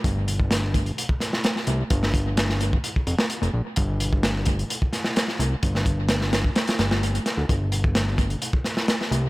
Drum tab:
HH |x-x-x-xxx-x-x-x-|x-x-x-x-x-x-xx--|x-x-x-xxx-x-x-x-|x-x-x-x-xxx-xxx-|
SD |----o-----oooo--|-o--oo-----o----|----o-----oooo--|-o--ooo-oooo--o-|
BD |o--o--o--o------|o-o----o-o------|o--o--o--o------|o-o----o--------|

HH |x-x-x-xxx-x-x-x-|
SD |----o-----oooo--|
BD |o--o--o--o------|